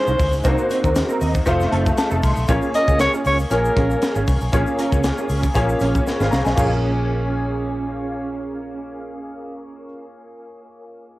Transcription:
Already playing: grand piano G#3 C#4 D#4 E4 F4 C5, alto saxophone C5
0.07 fingered electric bass C2, clean electric guitar D#4 F4 C5, shaker
0.19 fingered electric bass D2, muted clean electric guitar stroke, kick, open hi-hat, shaker
0.32 fingered electric bass C#2, muted clean electric guitar stroke, shaker
0.44 fingered electric bass C2, grand piano A#3 C4 D4 F#4 C5, clean electric guitar C4 D#4 A#4, kick, closed hi-hat, shaker
0.51 grand piano D#4
0.58 shaker
0.70 clean electric guitar C4 D#4 C5, closed hi-hat, shaker
0.84 fingered electric bass D#2, clean electric guitar C4 D#4 A#4, kick, shaker
0.95 muted clean electric guitar stroke, snare, closed hi-hat, shaker
1.09 clean electric guitar C4 D#4 A#4, shaker
1.21 fingered electric bass D#2, clean electric guitar C4 D#4 A#4, grand piano D#5, open hi-hat, shaker
1.34 muted clean electric guitar stroke, kick, shaker
1.46 fingered electric bass F1, grand piano A3 C4 D#4 F4 C5 F5, muted clean electric guitar stroke, kick, closed hi-hat, shaker
1.60 muted clean electric guitar stroke, snare, shaker
1.71 fingered electric bass F#1, clean electric guitar C4 D#4 A4, grand piano A5, closed hi-hat
1.86 muted clean electric guitar stroke, kick, shaker
1.97 grand piano A5, muted clean electric guitar stroke, snare, closed hi-hat, shaker
2.11 fingered electric bass F1, clean electric guitar C4 D#4 A4, shaker
2.23 fingered electric bass C2, grand piano C6, muted clean electric guitar stroke, kick, open hi-hat, shaker
2.36 fingered electric bass B1, muted clean electric guitar stroke, shaker
2.48 fingered electric bass A#1, grand piano A#3 C#4 F4 G#4 C#5, clean electric guitar C#4 F4 G#4, kick, closed hi-hat, shaker
2.62 shaker
2.74 clean electric guitar C#4 F4 A#4, alto saxophone D#5, closed hi-hat, shaker
2.88 fingered electric bass C#2, clean electric guitar C#4 F4 G#4, kick, shaker
2.99 alto saxophone C#5, muted clean electric guitar stroke, snare, closed hi-hat, shaker
3.13 clean electric guitar C#4 F4 G#4, shaker
3.25 fingered electric bass C#2, clean electric guitar C#4 F4 G#4, alto saxophone C#5, open hi-hat, shaker
3.39 muted clean electric guitar stroke, shaker
3.50 fingered electric bass A#1, grand piano A#3 C#4 F4 G#4 C#5, alto saxophone A#4, muted clean electric guitar stroke, closed hi-hat, shaker
3.64 muted clean electric guitar stroke, shaker
3.76 fingered electric bass A#1, clean electric guitar C#4 F4 G#4, kick, closed hi-hat
3.90 muted clean electric guitar stroke, shaker
4.02 muted clean electric guitar stroke, snare, closed hi-hat, shaker
4.15 fingered electric bass G#1, clean electric guitar C#4 F4 G#4, shaker
4.27 fingered electric bass C2, muted clean electric guitar stroke, kick, open hi-hat, shaker
4.41 fingered electric bass B1, muted clean electric guitar stroke, shaker
4.52 fingered electric bass A#1, grand piano A#3 C#4 F4 G#4 C#5, clean electric guitar C#4 F4 G#4, kick, closed hi-hat, shaker
4.67 shaker
4.78 clean electric guitar C#4 F4 A#4, closed hi-hat, shaker
4.92 fingered electric bass C#2, clean electric guitar C#4 F4 G#4, kick, shaker
5.04 muted clean electric guitar stroke, snare, closed hi-hat, shaker
5.18 clean electric guitar C#4 F4 G#4, shaker
5.29 fingered electric bass C#2, clean electric guitar C#4 F4 G#4, open hi-hat, shaker
5.43 muted clean electric guitar stroke, kick, shaker
5.54 fingered electric bass A#1, grand piano A#3 C#4 F4 G#4 C#5, kick, closed hi-hat, shaker
5.69 muted clean electric guitar stroke, shaker
5.80 fingered electric bass A#1, clean electric guitar C#4 F4 G#4, closed hi-hat, shaker
5.95 muted clean electric guitar stroke, kick, shaker
6.07 muted clean electric guitar stroke, snare, shaker
6.20 fingered electric bass G#1, clean electric guitar C#4 F4 G#4, grand piano C5 F5, snare, shaker
6.31 fingered electric bass C2, grand piano F5 A#5, muted clean electric guitar stroke, snare, shaker
6.45 fingered electric bass B1, grand piano D#5 G#5, muted clean electric guitar stroke, snare, shaker
6.54 fingered electric bass A#1, grand piano A#3 C#4 F4 G#4, clean electric guitar C#4, kick, floor tom, crash, shaker
6.59 clean electric guitar F4 G#4, grand piano C#5

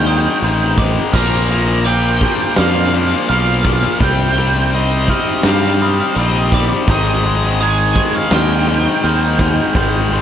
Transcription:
Already playing: fingered electric bass D#2, ambient pad C4 D#4 G#4 C5, lead electric guitar G5
0.07 distorted electric guitar G#2 D#3 G#3, glockenspiel D#6
0.42 fingered electric bass A1, distorted electric guitar G#2 D#3 G#3, open hi-hat
0.78 distorted electric guitar G#2 D#3 G#3, glockenspiel D6, kick
1.13 fingered electric bass A#1, distorted electric guitar A#2 F3 A#3, ambient pad A#3 D4 F4 G#4, lead electric guitar A#5, glockenspiel F6, kick, crash
1.51 distorted electric guitar A#2 F3 A#3
1.67 snare
1.85 distorted electric guitar A#2 F3 A#3, lead electric guitar G5, glockenspiel D6, open hi-hat
2.21 distorted electric guitar A#2 F3 A#3, kick
2.56 fingered electric bass F2, distorted electric guitar A#2 F3 A#3, lead electric guitar F5, glockenspiel F6, snare, open hi-hat
2.94 distorted electric guitar A#2 F3 A#3
3.29 fingered electric bass B1, distorted electric guitar A#2 F3 A#3, lead electric guitar F5, glockenspiel F6, open hi-hat
3.65 distorted electric guitar A#2 F3 A#3, kick
4.00 fingered electric bass C2, distorted electric guitar C3 G3 C4, ambient pad D#4 C5, lead electric guitar G5, glockenspiel G6, kick, open hi-hat
4.37 distorted electric guitar C3 G3 C4, glockenspiel G6
4.55 snare
4.73 distorted electric guitar C3 G3 C4, lead electric guitar D#5, open hi-hat
5.08 distorted electric guitar C3 G3 C4, glockenspiel F6, kick
5.43 fingered electric bass G2, distorted electric guitar C3 G3 C4, snare, open hi-hat
5.48 lead electric guitar F5
5.80 distorted electric guitar C3 G3 C4, glockenspiel D#6
6.16 fingered electric bass A#1, distorted electric guitar C3 G3 C4, lead electric guitar D#5, open hi-hat
6.52 distorted electric guitar C3 G3 C4, lead electric guitar D5, glockenspiel D6, kick
6.87 fingered electric bass G#1, distorted electric guitar G#2 D#3 G#3, ambient pad C4 G#4 D#5, lead electric guitar D#5, glockenspiel G6, kick, open hi-hat
7.25 distorted electric guitar G#2 D#3 G#3
7.42 snare
7.60 distorted electric guitar G#2 D#3 G#3, lead electric guitar G#5, glockenspiel D#6, open hi-hat
7.96 distorted electric guitar G#2 D#3 G#3, kick
8.16 lead electric guitar F5
8.31 fingered electric bass D#2, distorted electric guitar G#2 D#3 G#3, lead electric guitar G5, glockenspiel F6, snare, open hi-hat
8.68 distorted electric guitar G#2 D#3 G#3
9.03 fingered electric bass D#2, distorted electric guitar G#2 D#3 G#3, glockenspiel F6, open hi-hat
9.39 distorted electric guitar G#2 D#3 G#3, kick
9.75 fingered electric bass G#1, distorted electric guitar G#2 D#3 G#3, ambient pad A#4, glockenspiel G6, kick, open hi-hat
10.11 distorted electric guitar G#2 D#3 G#3, glockenspiel G6

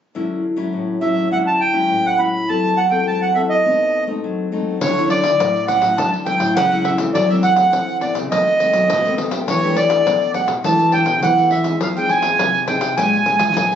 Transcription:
0.15 nylon-string guitar D3 F#3 C#4 E4
0.56 nylon-string guitar F#3 C#4 E4
0.73 nylon-string guitar A2
1.01 nylon-string guitar F#3 C#4 E4, accordion E5
1.31 nylon-string guitar D3 F#3 C#4 E4, accordion F#5
1.47 accordion A5
1.61 accordion G5
1.73 nylon-string guitar F#3 C#4 E4
1.90 nylon-string guitar A2
2.06 accordion F#5
2.18 nylon-string guitar F#3 C#4 E4, accordion B5
2.48 nylon-string guitar F#3 C4 E4 A4, accordion A5
2.77 accordion F#5
2.90 nylon-string guitar C4 E4 A4, accordion G5
3.07 nylon-string guitar F#3, accordion A5
3.22 accordion F#5
3.35 nylon-string guitar C4 E4 A4, accordion E5
3.49 accordion D#5
3.65 nylon-string guitar B2 A3 C4 D#4
4.07 nylon-string guitar A3 C4 D#4
4.24 nylon-string guitar F#3
4.52 nylon-string guitar A3 C4 D#4
4.81 nylon-string guitar D3 F#3 C#4 E4, accordion C#5, pandeiro
4.97 nylon-string guitar F#3 C#4 E4, pandeiro
5.10 accordion D5, pandeiro
5.24 nylon-string guitar F#3 E4, pandeiro
5.39 nylon-string guitar A2, pandeiro
5.56 pandeiro
5.68 nylon-string guitar F#3 C#4 E4, accordion F#5, pandeiro
5.81 nylon-string guitar A2, pandeiro
5.97 nylon-string guitar D3 F#3 C#4 E4, accordion A5, pandeiro
6.13 pandeiro
6.26 nylon-string guitar F#3 C#4 E4, accordion G5, pandeiro
6.40 nylon-string guitar A2, pandeiro
6.56 nylon-string guitar A2 C#3, accordion F#5, pandeiro
6.72 nylon-string guitar F#3 C#4 E4, pandeiro
6.84 accordion E5, pandeiro
6.98 nylon-string guitar E3 A3 C4, pandeiro
7.14 nylon-string guitar F#2 F#3, accordion D5, pandeiro
7.30 nylon-string guitar E3 A3 C4, accordion E5, pandeiro
7.43 accordion F#5, pandeiro
7.56 nylon-string guitar E3 A3 C4, pandeiro
7.73 nylon-string guitar F#2 C4, pandeiro
7.89 pandeiro
8.01 nylon-string guitar E3 A3 C4, accordion D5, pandeiro
8.15 nylon-string guitar C#3, pandeiro
8.31 nylon-string guitar B2 D#3 A3 C4, accordion D#5, pandeiro
8.47 pandeiro
8.60 nylon-string guitar D#3 A3 C4, pandeiro
8.73 nylon-string guitar F#3, pandeiro
8.90 nylon-string guitar F#2 B2, pandeiro
9.05 nylon-string guitar D#3 A3 C4, pandeiro
9.18 pandeiro
9.31 nylon-string guitar A3 D4 G4, pandeiro
9.48 nylon-string guitar E3, accordion C#5, pandeiro
9.63 nylon-string guitar A3 D4 G4, pandeiro
9.76 accordion D5, pandeiro
9.90 nylon-string guitar A3 D4 G4, pandeiro
10.06 nylon-string guitar B2, pandeiro
10.22 pandeiro
10.34 nylon-string guitar A3 D4 G4, accordion F#5, pandeiro
10.48 nylon-string guitar B2, pandeiro
10.64 nylon-string guitar E3 A3 D4 G4, accordion A5, pandeiro
10.79 pandeiro
10.92 nylon-string guitar A3 D4 G4, accordion G5, pandeiro
11.06 nylon-string guitar B2, pandeiro
11.23 nylon-string guitar B2 E3, accordion F#5, pandeiro
11.38 nylon-string guitar A3 D4 G4, pandeiro
11.51 accordion E5, pandeiro
11.64 nylon-string guitar C4 D#4 G#4, pandeiro
11.81 nylon-string guitar F3, accordion F5, pandeiro
11.97 nylon-string guitar C4 D#4 G#4, accordion G5, pandeiro
12.09 accordion G#5, pandeiro
12.22 nylon-string guitar C4 D#4 G#4, pandeiro
12.39 nylon-string guitar C3, pandeiro
12.54 pandeiro
12.67 nylon-string guitar C4 D#4 G#4, accordion G5, pandeiro
12.81 nylon-string guitar C3, pandeiro
12.97 nylon-string guitar A#2 G#3 D4 G4, accordion G#5, pandeiro
13.13 pandeiro
13.26 nylon-string guitar G#3 D4 G4, pandeiro
13.39 nylon-string guitar F3, pandeiro
13.56 nylon-string guitar F2 A#2, pandeiro
13.72 nylon-string guitar G#3, pandeiro

